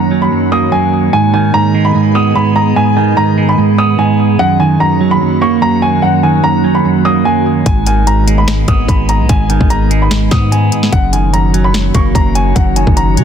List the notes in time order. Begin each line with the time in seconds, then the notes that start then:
Already playing: F#2 D#3 A#3 F#4 C#5 A#5
0.11 F#3
0.22 B5
0.32 F#2
0.52 A#3 D#6
0.72 F#2 G#5
1.13 G#2 D#3 B3 G#4 D#5 G#5
1.34 D#3 G#5
1.54 G#2 A#5
1.74 G#3
1.85 B5
1.95 G#2
2.15 B3 D#6
2.35 G#2 B5
2.56 A#5
2.76 G#2 G#5
2.97 D#3 G#5
3.17 G#2 A#5
3.38 G#3
3.49 B5
3.58 G#2
3.78 B3 D#6
3.99 G#2 G#5
4.39 F#2 A#3 F#4 C#5 F#5
4.60 D#3 G#5
4.80 F#2 A#5
5.01 F#3
5.11 B5
5.21 F#2
5.41 A#3 C#6
5.62 F#2 A#5
5.82 G#5
6.02 F#2 F#5
6.23 D#3 G#5
6.44 F#2 A#5
6.64 F#3
6.75 B5
6.85 F#2
7.05 A#3 D#6
7.25 F#2 G#5
7.66 G#1 B3 G#4 D#5 G#5, kick, closed hi-hat
7.86 D#3 G#5, closed hi-hat
8.07 G#2 A#5, closed hi-hat
8.27 G#3, closed hi-hat
8.38 B5
8.48 G#2, finger snap, snare, closed hi-hat
8.68 G#1 B3 D#6, kick, closed hi-hat
8.88 G#1 G#2 B5, kick, closed hi-hat
9.09 A#5, closed hi-hat
9.20 B1
9.29 G#1 G#2 G#5, kick, closed hi-hat
9.50 D#3 G#5, closed hi-hat
9.61 G#1, kick
9.70 G#2 A#5, closed hi-hat
9.91 G#3, closed hi-hat
10.02 B5
10.11 G#2, finger snap, snare, closed hi-hat
10.31 G#2 B3 D#6, finger snap, kick, snare, closed hi-hat
10.52 G#2 G#5, closed hi-hat
10.72 closed hi-hat
10.83 snare
10.92 F#1 D#3 A#3 F#4 C#5 F#5, kick, closed hi-hat
11.13 D#3 G#5, closed hi-hat
11.33 F#2 A#5, closed hi-hat
11.54 F#3, closed hi-hat
11.64 B5
11.74 F#2, finger snap, snare, closed hi-hat
11.94 F#1 A#3 C#6, kick, closed hi-hat
12.15 F#1 F#2 A#5, kick, closed hi-hat
12.35 G#5, closed hi-hat
12.55 F#1 F#2 F#5, kick, closed hi-hat
12.76 D#3 G#5, closed hi-hat
12.87 F#1, kick
12.97 F#2 A#5, closed hi-hat
13.17 C#3 F#3, closed hi-hat